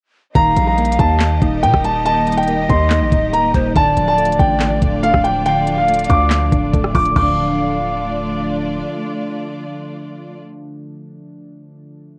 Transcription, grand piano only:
0.35 A#5
0.67 A#5
0.99 A5
1.63 G5
1.84 A5
2.05 A5
2.37 G5
2.69 C6
3.33 A#5
3.76 A5
4.08 A5
4.39 G5
5.03 F5
5.24 G5
5.46 G5
5.77 F5
6.10 D6
6.95 D6
7.16 D6

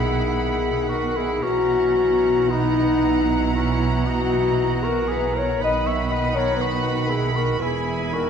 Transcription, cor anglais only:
Already playing: E4
0.89 F#4
1.17 E4
1.42 C#4
2.50 B3
3.56 C#4
4.06 D#4
4.84 F#4
5.08 G#4
5.34 A#4
5.62 B4
5.86 C#5
6.12 B4
6.36 A#4
6.61 F#4
7.10 E4
7.36 F#4
7.62 E4
8.14 F#4

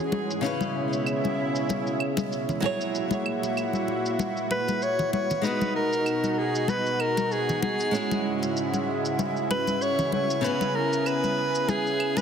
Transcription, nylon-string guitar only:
Already playing: G#3 C#4 E4 G#4
0.41 C#3 C#4 E4
0.46 B4
2.60 F#3 E4 G#4
2.65 C#5
5.42 G#3 D#4 F#4
5.47 B3
7.91 G#3 C#4 E4
7.96 G#4
10.41 C#3 C#4 E4
10.46 B3

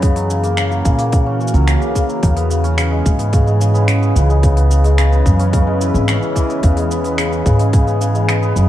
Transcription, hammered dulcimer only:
Already playing: B3 C#4 E4
0.03 C#3
0.16 F#3
0.30 C#3
0.43 A#3
0.58 C#3
0.71 F#3
0.85 C#3
0.99 A#3
1.12 C#3
1.26 C#4
1.40 C#3
1.54 F#3
1.67 C#3
1.81 A#3
1.95 C#3
2.09 F#3
2.22 C#3
2.36 B3
2.50 C#3
2.64 C#4
2.77 C#3
2.91 G#3
3.05 C#3
3.19 B3
3.32 C#3
3.46 G#3
3.60 C#3
3.74 B3
3.88 C#3
4.02 C#4
4.15 C#3
4.29 G#3
4.43 C#3
4.57 B3
4.70 C#3
4.84 G#3
4.98 C#3
5.12 B3
5.26 C#3
5.40 C#4
5.53 C#3
5.67 G#3
5.81 E4
5.95 C#3
6.08 C#4
6.22 E3
6.35 E3
6.49 B3
6.63 C#3
6.77 G#3
6.90 B3
7.04 B3
7.18 C#3
7.32 C#4
7.45 C#3
7.59 G#3
7.73 C#3
7.87 B3
8.01 C#3
8.15 G#3
8.28 B3
8.42 B3
8.56 C#3

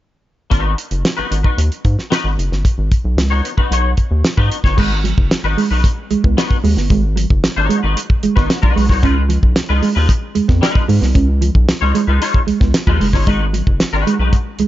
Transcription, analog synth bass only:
0.51 G#1
0.91 F#1
1.18 G#1
1.31 G#1
1.58 D#2
1.85 G#2
2.24 G#1
2.38 F#1
2.51 G1
2.78 G#1
3.05 B1
3.17 C#2
3.71 B1
4.11 D#2
4.38 G#2
4.64 G1
4.78 G#1
5.18 F#1
5.30 G#1
5.44 G#1
5.71 B1
6.11 C#2
6.24 C#2
6.64 D#2
6.77 G1
6.90 G#1
7.30 F#1
7.43 G#1
7.57 G#1
7.84 G#1
8.24 G#1
8.37 G#1
8.63 B1
8.77 B1
8.89 C2
9.03 C#2
9.43 B1
9.56 C#2
9.70 C#2
9.96 D#2
10.36 F2
10.49 F2
10.89 G#2
11.02 C2
11.15 C#2
11.55 B1
11.69 C#2
11.82 C#2
12.08 C#2
12.47 C#2
12.61 C#2
12.87 D#2
13.00 F#1
13.13 G1
13.27 G#1
13.67 F#1
13.80 G#1
13.93 G#1
14.19 B1
14.59 C#2

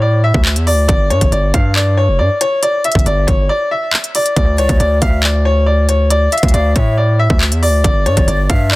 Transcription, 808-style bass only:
Already playing: A2
0.34 D2
0.56 E2
0.72 D2
0.89 G1
1.10 G2
1.21 G1
1.32 G1
1.54 G2
2.08 F1
2.19 G2
2.95 G1
3.06 G1
3.28 G1
4.37 D2
4.58 C#2
4.69 D2
4.80 D2
5.02 D2
6.43 D2
6.54 D2
6.76 A2
7.30 D2
7.52 E2
7.68 D2
7.84 G1
8.06 G2
8.17 G1
8.28 G1
8.50 G2

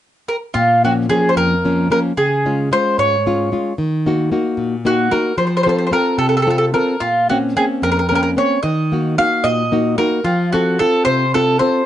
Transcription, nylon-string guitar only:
0.55 A#2
0.84 F3 A#3 C#4
1.09 F3 A#3 C#4
1.36 F2
1.65 F3 A#3 C#4
1.90 F3 A#3 C#4
2.17 C#3
2.46 G#3 C#4 F4
2.72 G#3 C#4 F4
2.98 G#2
3.26 G#3 C#4 F4
3.52 G#3 C#4 F4
3.78 D#3
4.06 A#3 D#4 F#4
4.32 A#3 D#4 F#4
4.57 A#2
4.85 A#3 D#4 F#4
5.11 A#3 D#4 F#4
5.37 F3
5.66 C4 F4 A4
5.91 C4 F4 A4
6.18 C3
6.47 C4 F4 A4
6.74 C4 F4 A4
7.01 A#2
7.30 A#3 C4 C#4
7.56 A#3 C4 C#4
7.82 F2
8.11 A#3 C4 C#4
8.36 A#3 C4 C#4
8.64 D#3
8.92 A#3 D#4 F#4
9.18 A#3 D#4 F#4
9.44 A#2
9.72 A#3 D#4 F#4
9.98 A#3 D#4 F#4
10.24 F3
10.53 C4 F4 A4
10.80 C4 F4 A4
11.06 C3
11.35 C4 F4 A4
11.60 C4 F4 A4

